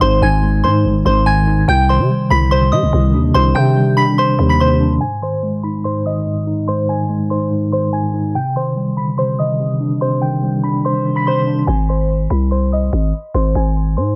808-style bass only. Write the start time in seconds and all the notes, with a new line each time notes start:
0.01 G#1
0.22 G#1
0.64 G#2
0.85 G#1
1.05 G#1
1.68 C2
1.99 C3
2.30 C2
2.72 C3
2.83 C2
2.93 C2
3.14 D#2
3.35 C2
3.55 C3
4.39 D#2
11.68 G#1
12.30 C2
12.93 G#1
13.35 G#1
13.55 G#1
13.97 G#2